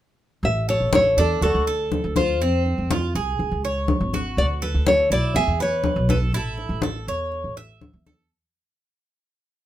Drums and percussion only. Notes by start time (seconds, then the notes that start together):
0.43 high conga
0.68 high conga
0.93 high conga
1.18 high conga
1.43 high conga
1.68 high conga
1.92 high conga
2.16 high conga
2.41 high conga
2.66 high conga
2.91 high conga
3.40 high conga
3.64 high conga
3.88 high conga
4.13 high conga
4.39 high conga
4.63 high conga
4.87 high conga
5.11 high conga
5.36 high conga
5.60 high conga
5.84 high conga
6.09 high conga
6.33 high conga
6.58 high conga
6.82 high conga
7.32 high conga
7.57 high conga
7.81 high conga
8.07 high conga